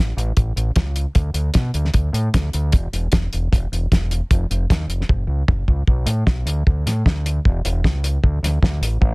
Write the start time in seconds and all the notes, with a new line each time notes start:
Already playing: A1
0.17 A1, closed hi-hat
0.37 A1, kick, closed hi-hat
0.56 A1, closed hi-hat
0.76 C#2, kick, snare, closed hi-hat
0.96 closed hi-hat
1.15 D2, kick, closed hi-hat
1.34 D2, closed hi-hat
1.54 B2, kick, snare, closed hi-hat
1.74 D2, closed hi-hat
1.85 snare
1.94 D2, kick, closed hi-hat
2.13 A2, closed hi-hat
2.34 D2, kick, snare, closed hi-hat
2.53 D2, closed hi-hat
2.72 E1, kick, closed hi-hat
2.93 E1, closed hi-hat
3.12 E1, kick, snare, closed hi-hat
3.33 E1, closed hi-hat
3.52 E1, kick, closed hi-hat
3.72 E1, closed hi-hat
3.92 E1, kick, snare, closed hi-hat
4.11 closed hi-hat
4.31 F1, kick, closed hi-hat
4.51 F1, closed hi-hat
4.70 D#2, kick, snare, closed hi-hat
4.87 F1, closed hi-hat
5.01 snare
5.09 F#1, kick, high tom
5.27 C#2
5.48 F#1, kick, mid tom
5.68 C#2, kick
5.88 B1, kick
6.06 A2, closed hi-hat
6.26 B1, kick, snare
6.46 D2, closed hi-hat
6.67 D2, kick
6.86 A2, snare, closed hi-hat
7.06 D2, kick, snare
7.26 closed hi-hat
7.45 E1, kick
7.65 E1, closed hi-hat
7.84 C#2, kick, snare
8.04 closed hi-hat
8.24 D2, kick
8.43 D2, snare, closed hi-hat
8.62 D2, kick, snare
8.81 A1, closed hi-hat
9.01 A1, kick